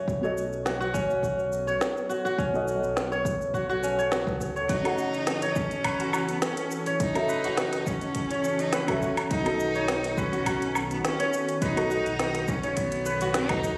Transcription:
Already playing: analog synth pad F#3 C#4 A4, kora C#4 F#4
0.08 analog synth bass B1, kick, shaker
0.21 synth stab B3 F#4 A4 D#5, kora C#5, shaker
0.38 shaker
0.53 shaker
0.60 analog synth pad B3
0.66 kora F#4, snare, shaker
0.81 kora F#4, shaker
0.94 kora C#4, kick, shaker
1.10 shaker
1.23 kick, shaker
1.39 shaker
1.52 shaker
1.67 kora C#5, shaker
1.81 snare, shaker
1.97 shaker
2.09 kora F#4, shaker
2.25 kora F#4, shaker
2.38 analog synth bass B1, kora C#4, kick, shaker
2.54 synth stab B3 F#4 A4 D#5, shaker
2.68 shaker
2.83 analog synth bass B1, shaker
2.97 snare, shaker
3.12 kora C#5, snare, shaker
3.25 kick, shaker
3.41 shaker
3.54 kora F#4, kick, shaker
3.69 kora F#4, shaker
3.83 kora C#4, shaker
3.99 kora C#5, shaker
4.12 kora F#4, snare, shaker
4.27 analog synth bass C#2, kick, shaker
4.41 kick, shaker
4.56 kora C#5, shaker
4.69 analog synth bass F#1, analog synth pad E3, cello D#4, kora F#4, kick, closed hi-hat, shaker
4.83 synth stab C#4 F#4 A4 F#5, closed hi-hat, low woodblock, shaker
4.98 shaker
5.14 analog synth pad C#4, shaker
5.27 snare, closed hi-hat, shaker
5.42 kora C#5, closed hi-hat, shaker
5.56 cello C#4, analog synth pad F#4, kick, shaker
5.71 closed hi-hat, shaker
5.84 kora B4, kick, closed hi-hat, low woodblock, shaker
6.00 kora F#4, closed hi-hat, shaker
6.13 kora F#4, low woodblock, shaker
6.29 cello B3, closed hi-hat, shaker
6.42 cello C#4, snare, closed hi-hat, shaker
6.57 closed hi-hat, shaker
6.71 shaker
6.86 kora C#5, closed hi-hat, shaker
7.00 analog synth bass F#1, cello D#4, kick, closed hi-hat, shaker
7.14 synth stab C#4 F#4 A4 E5, closed hi-hat, low woodblock, shaker
7.29 kora B4, shaker
7.44 analog synth bass F#1, kora F#4, closed hi-hat, shaker
7.57 kora F#4, snare, closed hi-hat, shaker
7.73 snare, closed hi-hat, shaker
7.87 cello C#4, kick, shaker
8.01 closed hi-hat, shaker
8.15 kick, closed hi-hat, shaker
8.31 kora C#5, closed hi-hat, shaker
8.44 shaker
8.59 cello D#4, closed hi-hat, shaker
8.73 cello C#4, kora B4, snare, closed hi-hat, shaker
8.87 synth stab C#4 F#4 A4 E5, kora F#4, kick, closed hi-hat, low woodblock, shaker
9.02 kora F#4, kick, shaker
9.17 closed hi-hat, low woodblock, shaker
9.30 analog synth bass B1, analog synth pad D#3, cello D#4, kick, closed hi-hat, shaker
9.42 analog synth pad B3, synth stab B3 F#4
9.46 synth stab A4 D#5, closed hi-hat, low woodblock, shaker
9.60 shaker
9.75 kora C#5, shaker
9.88 snare, closed hi-hat, shaker
10.04 closed hi-hat, shaker
10.18 cello C#4, kora B4, kick, shaker
10.33 kora F#4, closed hi-hat, shaker
10.46 kora F#4, kick, closed hi-hat, low woodblock, shaker
10.62 closed hi-hat, shaker
10.75 low woodblock, shaker
10.91 cello B3, closed hi-hat, shaker
11.05 cello C#4, snare, closed hi-hat, shaker
11.20 kora C#5, closed hi-hat, shaker
11.33 shaker
11.49 closed hi-hat, shaker
11.62 analog synth bass B1, cello D#4, kora B4, kick, closed hi-hat, shaker
11.76 synth stab B3 F#4 A4 D#5, kora F#4, closed hi-hat, low woodblock, shaker
11.91 kora F#4, shaker
12.06 analog synth bass B1, closed hi-hat, shaker
12.19 snare, closed hi-hat, shaker
12.35 snare, closed hi-hat, shaker
12.48 cello C#4, kick, shaker
12.63 kora C#5, closed hi-hat, shaker
12.77 cello B3, kick, closed hi-hat, shaker
12.92 closed hi-hat, shaker
13.06 kora B4, shaker
13.21 kora F#4, closed hi-hat, shaker
13.34 cello D#4, kora F#4, snare, closed hi-hat, shaker
13.49 analog synth bass D#2, synth stab B3 F#4 A4 D#5, kick, closed hi-hat, low woodblock, shaker
13.64 kick, shaker

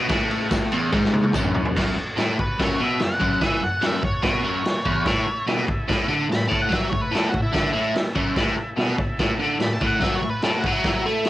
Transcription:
0.08 overdriven electric guitar A2, transistor combo organ F#4 A4 C#5, kick, snare, ride
0.28 transistor combo organ F#4 A4 C#5, ride
0.49 transistor combo organ F#4 A4 C#5, kick, snare, ride, tambourine
0.70 overdriven electric guitar E2, transistor combo organ F#4 A4 C#5, ride
0.90 overdriven electric guitar G#2, transistor combo organ F#4 A4 C#5, kick, snare
1.04 snare
1.11 transistor combo organ F#4 A4 C#5, high tom
1.24 high tom
1.33 overdriven electric guitar F#2, transistor combo organ F#4 A4 C#5, kick, mid tom, tambourine
1.44 mid tom
1.53 transistor combo organ F#4 A4 C#5, floor tom
1.65 floor tom
1.74 overdriven electric guitar F#2, transistor combo organ F#4 A4 C#5, kick, snare, crash
1.95 transistor combo organ F#4 A4 C#5, muted overdriven electric guitar stroke
2.17 overdriven electric guitar A2, transistor combo organ F#4 A4 B4, snare, open hi-hat
2.38 transistor combo organ F#4 A4 C#5, lead electric guitar B4, muted overdriven electric guitar stroke, kick
2.58 overdriven electric guitar F#2, transistor combo organ F#4 A4 C#5, kick, snare, open hi-hat
2.63 lead electric guitar C#5
2.79 overdriven electric guitar B2, transistor combo organ F#4 A4 C#5
2.84 lead electric guitar E5
2.98 overdriven electric guitar F#2, transistor combo organ F#4 A4 C#5, snare, open hi-hat
3.05 lead electric guitar F#5
3.19 overdriven electric guitar F#2, transistor combo organ F#4 A4 C#5, kick
3.41 overdriven electric guitar E3, transistor combo organ F#4 A4 C#5, lead electric guitar E5, kick, snare, open hi-hat
3.61 overdriven electric guitar F#2, transistor combo organ F#4 A4 C#5, lead electric guitar F#5
3.81 overdriven electric guitar F#2, transistor combo organ F#4 A4 C#5, snare, open hi-hat
3.86 lead electric guitar E5
4.01 overdriven electric guitar F#2, transistor combo organ F#4 A4 C#5, lead electric guitar C#5, kick
4.22 overdriven electric guitar B2, transistor combo organ F#4 A4 C#5, lead electric guitar C#5, kick, snare, open hi-hat
4.44 overdriven electric guitar F#2, transistor combo organ F#4 A4 C#5
4.61 transistor combo organ F#4 A4 C#5, muted overdriven electric guitar stroke
4.65 snare, open hi-hat
4.85 overdriven electric guitar E2, transistor combo organ F#4 A4 C#5, kick
5.04 overdriven electric guitar A2, transistor combo organ E4 A4 E5, kick, snare, open hi-hat
5.23 transistor combo organ E4 A4 E5
5.28 muted overdriven electric guitar stroke
5.46 overdriven electric guitar B2, transistor combo organ E4 A4 E5, snare, open hi-hat
5.67 transistor combo organ E4 A4 E5, muted overdriven electric guitar stroke, kick
5.88 overdriven electric guitar A2, transistor combo organ E4 A4 E5, kick, snare, open hi-hat
6.08 overdriven electric guitar D3, transistor combo organ E4 A4 E5
6.29 overdriven electric guitar A2, transistor combo organ E4 A4 E5, lead electric guitar B5, snare, open hi-hat
6.48 overdriven electric guitar A2, transistor combo organ E4 A4, lead electric guitar A5, kick
6.52 transistor combo organ E5
6.61 lead electric guitar F#5
6.70 overdriven electric guitar F#3, transistor combo organ E4 A4, kick, snare, open hi-hat
6.75 transistor combo organ E5, lead electric guitar E5
6.90 overdriven electric guitar A2, transistor combo organ E4, lead electric guitar C#5, kick
6.95 transistor combo organ A4 C#5
7.01 lead electric guitar B4
7.12 overdriven electric guitar A2, transistor combo organ E4 A4 E5, snare, open hi-hat
7.16 lead electric guitar A4
7.28 overdriven electric guitar A2, lead electric guitar F#4
7.34 transistor combo organ E4 A4 E5, kick
7.42 lead electric guitar E4
7.53 overdriven electric guitar D3, transistor combo organ E4 A4 E5, lead electric guitar E4, kick, snare, open hi-hat
7.72 overdriven electric guitar A2, transistor combo organ E4 A4 E5
7.92 transistor combo organ E4 A4 E5, muted overdriven electric guitar stroke, open hi-hat
7.96 snare
8.12 overdriven electric guitar F#2, transistor combo organ E4 A4 E5, kick
8.35 overdriven electric guitar A2, transistor combo organ E4 A4 E5, kick, snare, open hi-hat
8.56 transistor combo organ E4 A4 E5, muted overdriven electric guitar stroke
8.76 overdriven electric guitar B2, transistor combo organ E4 A4 E5, snare, open hi-hat
8.98 transistor combo organ E4 A4 E5, muted overdriven electric guitar stroke, kick
9.19 overdriven electric guitar A2, transistor combo organ E4 A4 E5, kick, snare, open hi-hat
9.39 overdriven electric guitar D3, transistor combo organ E4 A4 E5
9.60 overdriven electric guitar A2, transistor combo organ E4 A4, lead electric guitar B5, snare, open hi-hat
9.64 transistor combo organ E5
9.73 lead electric guitar A5
9.81 overdriven electric guitar A2, transistor combo organ E4 A4, kick
9.86 transistor combo organ E5, lead electric guitar F#5
10.00 overdriven electric guitar F#3, transistor combo organ E4, lead electric guitar E5, kick, snare, open hi-hat
10.05 transistor combo organ A4 C#5
10.16 lead electric guitar C#5
10.23 overdriven electric guitar A2, transistor combo organ E4 A4 B4
10.30 lead electric guitar B4
10.42 overdriven electric guitar A2, transistor combo organ E4 A4 E5, lead electric guitar A4, snare, open hi-hat
10.59 transistor combo organ E4 A4, lead electric guitar F#4
10.64 overdriven electric guitar F#3, transistor combo organ E5, kick
10.73 lead electric guitar E4
10.83 transistor combo organ E4 A4 E5, lead electric guitar E4, kick, snare, open hi-hat
11.03 overdriven electric guitar A3, transistor combo organ E4 A4 E5
11.25 transistor combo organ E4, snare, open hi-hat

